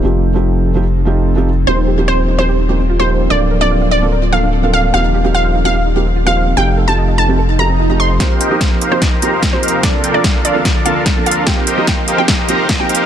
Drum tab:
HH |--------------------------------|--------------------------------|--------------------------------|--------------------------------|
SD |--------------------------------|--------------------------------|--------------------------------|--------------------------------|
BD |--------------------------------|--------------------------------|--------------------------------|--------------------------------|

HH |--------------------------------|x---x---x---x---x---x---x---xx--|x---x---x---x---x---x---x---xx--|x---x---x---x---x---x---x---xx--|
SD |--------------------------------|o-------o-------o-------o-------|o-------o-------o-------o-------|o-------o-------o-------o-------|
BD |--------------------------------|o-------o-------o-------o-------|o-------o-------o-------o-------|o-------o-------o-------o-------|